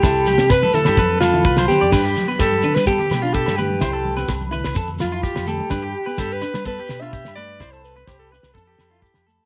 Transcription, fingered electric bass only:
\new Staff \with { instrumentName = "Fingered electric bass" } { \clef bass \time 4/4 \key g \mixolydian \tempo 4 = 127 c,8. c8 r8 g,16 f,4 c,8 r16 f,16 | g,8 r8 g,8 r16 g8 r16 b,8. g,8. | c,4 c,8. c,16 f,8 f,8 r16 f,8 r16 | g,8 r8 g,8 r16 g8 r16 b,8. g,8. |
c,4 c,8. c,16 f,8 f,8 r16 f,8 r16 | }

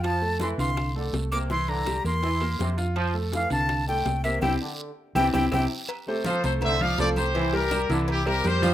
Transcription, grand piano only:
\new Staff \with { instrumentName = "Grand piano" } { \time 4/4 \key f \major \tempo 4 = 164 <f' f''>8 <a a'>4 <d f''>4 <a a'>4 <bes bes'>8 | <e e'>4 <g g'>8 <bes bes'>8 <e' e''>8 <bes bes'>4 <f' f''>8~ | <f' f''>8 <a a'>4 <d f''>4 <a a'>4 <bes bes'>8 | <c' e' g'>8 r4. <c' e' g'>8 <c' e' g'>8 <c' e' g'>8 r8 |
r8 <a a' c''>8 <f f' f''>8 <a a' c''>4 <f f' f''>8 <a a' c''>4 | <e e' e''>8 <g g' bes'>8 <g g' bes'>8 <e e' e''>4 <g g' bes'>8 <g g' bes'>8 <f f' f''>8 | }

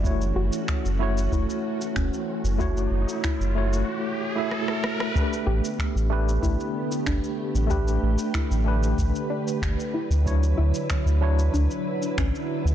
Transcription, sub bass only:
\new Staff \with { instrumentName = "Sub bass" } { \clef bass \time 4/4 \key a \mixolydian \tempo 4 = 94 fis,,8 fis,,16 r8 fis,,8. fis,,16 r8. e,,16 r8 fis,,16~ | fis,,8 fis,,16 r8 fis,,8. r2 | r8 a,,16 r8 a,,8. a,,16 r8. g,,16 r8 a,,16~ | a,,8 a,,16 r8 a,,8. a,,16 r8. g,,16 r8 d,16~ |
d,8 d,16 r8 d,8. d,16 r8. a,,16 r8 d,16 | }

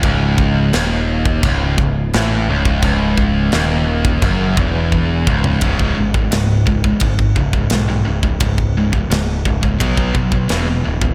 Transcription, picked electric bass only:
\new Staff \with { instrumentName = "Picked electric bass" } { \clef bass \time 4/4 \key cis \minor \tempo 4 = 86 cis,,4 dis,,4 cis,,8 cis,,8 a,,8 cis,,8 | cis,,4 dis,,4 fis,,8 e,,4 cis,,8 | cis,,8 gis,,8 cis,,4 gis,,8 cis,,8 b,,8 cis,,8 | cis,,4 cis,,8 cis,,8 b,,8 b,,8 e,,8 d,,8 | }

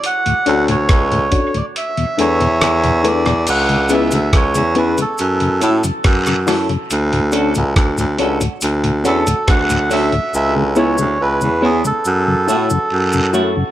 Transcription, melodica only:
\new Staff \with { instrumentName = "Melodica" } { \time 4/4 \key fis \minor \tempo 4 = 70 fis''8. cis''4 d''16 e''8 cis''4 d''8 | fis''8 e''8 cis''8 b'16 a'4 r4 r16 | r2 r8 a'8 fis''8 e''8 | e''8 cis''8 b'8 gis'16 a'4.~ a'16 r8 | }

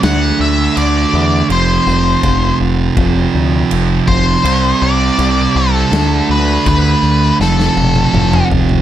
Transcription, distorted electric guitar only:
\new Staff \with { instrumentName = "Distorted electric guitar" } { \clef bass \time 4/4 \key f \lydian \tempo 4 = 81 <d a d'>2 <f, c f>2 | <f, c f>2 <c g c'>2 | <d a d'>2 <f, c f>2 | }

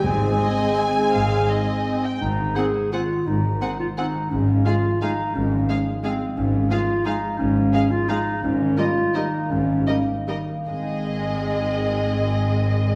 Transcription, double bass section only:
\new Staff \with { instrumentName = "Double bass section" } { \clef bass \time 3/4 \key aes \major \tempo 4 = 168 aes,,4 r2 | aes,,4 r2 | aes,,4 r2 | aes,,4 r2 |
aes,,4 r2 | aes,,4 r2 | aes,,4 r2 | aes,,4 r2 |
aes,,4 r2 | aes,,4 r2 | aes,,2.~ | aes,,2. | }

